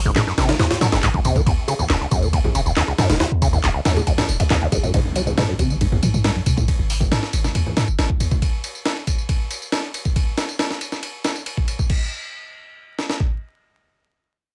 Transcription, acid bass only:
0.06 0.11 G#2 medium
0.16 0.22 G#2 loud
0.27 0.33 F#2 medium
0.38 0.51 C3 medium
0.49 0.55 D#3 medium
0.60 0.66 G#2 medium
0.81 0.87 F#3 medium
0.92 0.98 G#2 medium
1.03 1.09 G#2 loud
1.14 1.20 F#2 medium
1.25 1.37 C3 medium
1.36 1.42 D#3 medium
1.46 1.52 D#2 medium
1.68 1.74 C#3 medium
1.79 1.85 D#2 medium
1.90 1.96 D#2 loud
2.01 2.07 C#2 medium
2.11 2.24 F#2 medium
2.22 2.28 A#2 medium
2.33 2.39 D#2 medium
2.55 2.61 C#3 medium
2.66 2.72 D#2 medium
2.76 2.83 D#2 loud
2.87 2.93 C#2 medium
2.98 3.11 F#2 medium
3.09 3.15 A#2 medium
3.20 3.26 D#2 medium
3.42 3.48 C#3 medium
3.53 3.59 D#2 medium
3.63 3.70 D#2 loud
3.74 3.80 C#2 medium
3.85 3.98 F#2 medium
3.96 4.02 A#2 medium
4.07 4.13 D#2 medium
4.40 4.43 F#2 medium
4.51 4.57 D#2 loud
4.62 4.68 D#2 loud
4.72 4.78 D#2 medium
4.83 4.92 F#2 medium
4.94 5.00 G#2 medium
5.16 5.22 F#3 medium
5.27 5.33 G#2 medium
5.37 5.44 G#2 loud
5.49 5.54 F#2 medium
5.59 5.72 C3 medium
5.70 5.76 D#3 medium
5.81 5.87 G#2 medium
6.03 6.09 F#3 medium
6.14 6.20 G#2 medium
6.25 6.31 G#2 loud
6.36 6.41 F#2 medium
6.46 6.59 C3 medium
6.57 6.63 D#3 medium

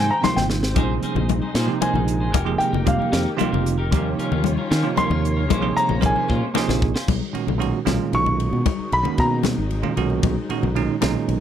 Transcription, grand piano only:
0.11 0.23 A#5 medium
0.24 0.37 C6 medium
0.36 0.44 G5 medium
1.82 2.57 G#5 medium
2.58 2.85 G5 medium
2.88 3.13 F5 medium
4.98 5.73 C6 loud
5.77 6.02 A#5 loud
6.06 6.30 G#5 medium
8.15 8.89 C#6 loud
8.93 9.18 B5 medium
9.20 9.35 A#5 medium

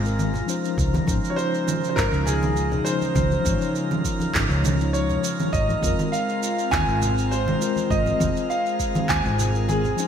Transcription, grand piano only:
0.00 0.44 G#4 medium
1.30 1.37 C#5 medium
1.36 1.86 C5 loud
1.89 1.96 C5 medium
1.96 2.27 A#4 loud
2.26 2.87 G#4 loud
2.85 3.70 C5 medium
4.93 5.55 C#5 medium
5.53 6.14 D#5 loud
6.12 6.73 F5 loud
6.71 7.33 G#5 loud
7.31 7.92 C5 loud
7.90 8.52 D#5 medium
8.50 9.05 F5 loud
9.09 9.71 G#5 loud
9.68 10.07 G#4 medium

